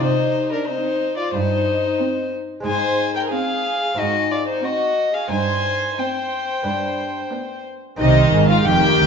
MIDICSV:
0, 0, Header, 1, 8, 480
1, 0, Start_track
1, 0, Key_signature, -3, "minor"
1, 0, Tempo, 657895
1, 18, Time_signature, 4, 2, 24, 8
1, 3378, Tempo, 671141
1, 6551, End_track
2, 0, Start_track
2, 0, Title_t, "Violin"
2, 0, Program_c, 0, 40
2, 22, Note_on_c, 0, 72, 70
2, 370, Note_off_c, 0, 72, 0
2, 383, Note_on_c, 0, 70, 59
2, 490, Note_off_c, 0, 70, 0
2, 495, Note_on_c, 0, 72, 69
2, 848, Note_off_c, 0, 72, 0
2, 856, Note_on_c, 0, 74, 59
2, 970, Note_off_c, 0, 74, 0
2, 974, Note_on_c, 0, 72, 75
2, 1682, Note_off_c, 0, 72, 0
2, 1940, Note_on_c, 0, 80, 79
2, 2272, Note_off_c, 0, 80, 0
2, 2305, Note_on_c, 0, 79, 70
2, 2351, Note_off_c, 0, 79, 0
2, 2425, Note_on_c, 0, 77, 74
2, 2908, Note_on_c, 0, 75, 69
2, 2919, Note_off_c, 0, 77, 0
2, 3146, Note_on_c, 0, 74, 62
2, 3157, Note_off_c, 0, 75, 0
2, 3263, Note_off_c, 0, 74, 0
2, 3267, Note_on_c, 0, 72, 60
2, 3386, Note_on_c, 0, 75, 65
2, 3397, Note_off_c, 0, 72, 0
2, 3742, Note_on_c, 0, 77, 57
2, 3753, Note_off_c, 0, 75, 0
2, 3857, Note_off_c, 0, 77, 0
2, 3861, Note_on_c, 0, 80, 77
2, 4349, Note_on_c, 0, 79, 66
2, 4360, Note_off_c, 0, 80, 0
2, 5547, Note_off_c, 0, 79, 0
2, 5782, Note_on_c, 0, 75, 76
2, 6113, Note_off_c, 0, 75, 0
2, 6133, Note_on_c, 0, 77, 74
2, 6254, Note_on_c, 0, 79, 89
2, 6265, Note_off_c, 0, 77, 0
2, 6551, Note_off_c, 0, 79, 0
2, 6551, End_track
3, 0, Start_track
3, 0, Title_t, "Violin section"
3, 0, Program_c, 1, 48
3, 15, Note_on_c, 1, 63, 66
3, 374, Note_off_c, 1, 63, 0
3, 376, Note_on_c, 1, 62, 56
3, 495, Note_off_c, 1, 62, 0
3, 497, Note_on_c, 1, 63, 60
3, 852, Note_on_c, 1, 65, 52
3, 856, Note_off_c, 1, 63, 0
3, 974, Note_off_c, 1, 65, 0
3, 977, Note_on_c, 1, 63, 60
3, 1698, Note_off_c, 1, 63, 0
3, 1935, Note_on_c, 1, 72, 69
3, 2269, Note_off_c, 1, 72, 0
3, 2297, Note_on_c, 1, 70, 60
3, 2410, Note_on_c, 1, 68, 60
3, 2415, Note_off_c, 1, 70, 0
3, 2894, Note_off_c, 1, 68, 0
3, 2894, Note_on_c, 1, 66, 56
3, 3132, Note_off_c, 1, 66, 0
3, 3137, Note_on_c, 1, 65, 51
3, 3186, Note_off_c, 1, 65, 0
3, 3256, Note_on_c, 1, 63, 50
3, 3376, Note_off_c, 1, 63, 0
3, 3380, Note_on_c, 1, 66, 58
3, 3738, Note_off_c, 1, 66, 0
3, 3739, Note_on_c, 1, 68, 51
3, 3856, Note_off_c, 1, 68, 0
3, 3858, Note_on_c, 1, 72, 73
3, 4330, Note_off_c, 1, 72, 0
3, 4343, Note_on_c, 1, 72, 51
3, 5520, Note_off_c, 1, 72, 0
3, 5783, Note_on_c, 1, 63, 85
3, 6114, Note_off_c, 1, 63, 0
3, 6137, Note_on_c, 1, 65, 68
3, 6254, Note_off_c, 1, 65, 0
3, 6254, Note_on_c, 1, 67, 83
3, 6551, Note_off_c, 1, 67, 0
3, 6551, End_track
4, 0, Start_track
4, 0, Title_t, "Violin section"
4, 0, Program_c, 2, 48
4, 503, Note_on_c, 2, 63, 59
4, 857, Note_off_c, 2, 63, 0
4, 1456, Note_on_c, 2, 63, 55
4, 1813, Note_off_c, 2, 63, 0
4, 2414, Note_on_c, 2, 63, 50
4, 2772, Note_off_c, 2, 63, 0
4, 3378, Note_on_c, 2, 63, 54
4, 3734, Note_off_c, 2, 63, 0
4, 4335, Note_on_c, 2, 63, 53
4, 4696, Note_off_c, 2, 63, 0
4, 5302, Note_on_c, 2, 62, 51
4, 5659, Note_off_c, 2, 62, 0
4, 5779, Note_on_c, 2, 75, 86
4, 6112, Note_off_c, 2, 75, 0
4, 6139, Note_on_c, 2, 77, 81
4, 6251, Note_on_c, 2, 79, 98
4, 6255, Note_off_c, 2, 77, 0
4, 6551, Note_off_c, 2, 79, 0
4, 6551, End_track
5, 0, Start_track
5, 0, Title_t, "Viola section"
5, 0, Program_c, 3, 48
5, 497, Note_on_c, 3, 60, 51
5, 853, Note_off_c, 3, 60, 0
5, 1460, Note_on_c, 3, 60, 54
5, 1815, Note_off_c, 3, 60, 0
5, 2413, Note_on_c, 3, 60, 52
5, 2771, Note_off_c, 3, 60, 0
5, 3378, Note_on_c, 3, 60, 46
5, 3734, Note_off_c, 3, 60, 0
5, 4342, Note_on_c, 3, 60, 53
5, 4700, Note_off_c, 3, 60, 0
5, 5301, Note_on_c, 3, 59, 45
5, 5659, Note_off_c, 3, 59, 0
5, 5774, Note_on_c, 3, 51, 67
5, 6225, Note_off_c, 3, 51, 0
5, 6253, Note_on_c, 3, 51, 73
5, 6551, Note_off_c, 3, 51, 0
5, 6551, End_track
6, 0, Start_track
6, 0, Title_t, "Lute"
6, 0, Program_c, 4, 24
6, 0, Note_on_c, 4, 60, 43
6, 5, Note_on_c, 4, 63, 39
6, 14, Note_on_c, 4, 48, 44
6, 392, Note_off_c, 4, 48, 0
6, 977, Note_on_c, 4, 43, 46
6, 1356, Note_off_c, 4, 43, 0
6, 1894, Note_off_c, 4, 60, 0
6, 1899, Note_on_c, 4, 56, 42
6, 1900, Note_off_c, 4, 63, 0
6, 1913, Note_on_c, 4, 60, 38
6, 1922, Note_on_c, 4, 63, 43
6, 1934, Note_on_c, 4, 44, 42
6, 2312, Note_off_c, 4, 44, 0
6, 2848, Note_off_c, 4, 56, 0
6, 2855, Note_off_c, 4, 60, 0
6, 2860, Note_off_c, 4, 63, 0
6, 2878, Note_on_c, 4, 60, 39
6, 2888, Note_on_c, 4, 63, 37
6, 2901, Note_on_c, 4, 44, 42
6, 3280, Note_off_c, 4, 44, 0
6, 3820, Note_off_c, 4, 60, 0
6, 3825, Note_off_c, 4, 63, 0
6, 3840, Note_on_c, 4, 60, 34
6, 3851, Note_on_c, 4, 63, 38
6, 3859, Note_on_c, 4, 43, 43
6, 4239, Note_off_c, 4, 43, 0
6, 4784, Note_off_c, 4, 60, 0
6, 4790, Note_off_c, 4, 63, 0
6, 4805, Note_on_c, 4, 59, 40
6, 4814, Note_on_c, 4, 62, 37
6, 4826, Note_on_c, 4, 43, 43
6, 5203, Note_off_c, 4, 43, 0
6, 5745, Note_off_c, 4, 59, 0
6, 5749, Note_off_c, 4, 62, 0
6, 5761, Note_on_c, 4, 60, 53
6, 5769, Note_on_c, 4, 63, 52
6, 5781, Note_on_c, 4, 48, 57
6, 5995, Note_off_c, 4, 48, 0
6, 6022, Note_on_c, 4, 44, 58
6, 6235, Note_off_c, 4, 44, 0
6, 6265, Note_on_c, 4, 41, 61
6, 6478, Note_off_c, 4, 41, 0
6, 6500, Note_on_c, 4, 38, 60
6, 6551, Note_off_c, 4, 38, 0
6, 6551, Note_off_c, 4, 60, 0
6, 6551, Note_off_c, 4, 63, 0
6, 6551, End_track
7, 0, Start_track
7, 0, Title_t, "Cello section"
7, 0, Program_c, 5, 48
7, 17, Note_on_c, 5, 48, 65
7, 394, Note_off_c, 5, 48, 0
7, 979, Note_on_c, 5, 43, 66
7, 1358, Note_off_c, 5, 43, 0
7, 1939, Note_on_c, 5, 44, 62
7, 2316, Note_off_c, 5, 44, 0
7, 2899, Note_on_c, 5, 44, 55
7, 3280, Note_off_c, 5, 44, 0
7, 3860, Note_on_c, 5, 43, 65
7, 4240, Note_off_c, 5, 43, 0
7, 4826, Note_on_c, 5, 43, 58
7, 5203, Note_off_c, 5, 43, 0
7, 5783, Note_on_c, 5, 48, 81
7, 6003, Note_off_c, 5, 48, 0
7, 6023, Note_on_c, 5, 44, 72
7, 6254, Note_off_c, 5, 44, 0
7, 6258, Note_on_c, 5, 41, 65
7, 6493, Note_off_c, 5, 41, 0
7, 6498, Note_on_c, 5, 38, 70
7, 6551, Note_off_c, 5, 38, 0
7, 6551, End_track
8, 0, Start_track
8, 0, Title_t, "Double bass section"
8, 0, Program_c, 6, 48
8, 5784, Note_on_c, 6, 36, 70
8, 6004, Note_off_c, 6, 36, 0
8, 6021, Note_on_c, 6, 32, 66
8, 6253, Note_off_c, 6, 32, 0
8, 6261, Note_on_c, 6, 29, 73
8, 6495, Note_off_c, 6, 29, 0
8, 6504, Note_on_c, 6, 38, 73
8, 6551, Note_off_c, 6, 38, 0
8, 6551, End_track
0, 0, End_of_file